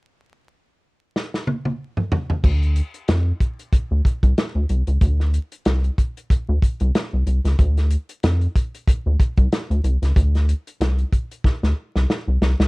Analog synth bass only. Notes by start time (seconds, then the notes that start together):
2.44 D2
3.09 F2
3.73 D2
3.91 D2
4.23 C2
4.55 D2
4.70 C2
4.88 C#2
5.01 D2
5.66 C2
6.30 D2
6.49 D2
6.81 C2
7.13 C2
7.27 C2
7.45 C#2
7.59 D2
8.24 F2
8.88 D2
9.06 D2
9.38 C2
9.70 D2
9.84 C2
10.02 C#2
10.16 D2
10.80 C2
11.45 D2
11.63 D2
11.96 C2
12.28 C2
12.41 C2
12.60 C#2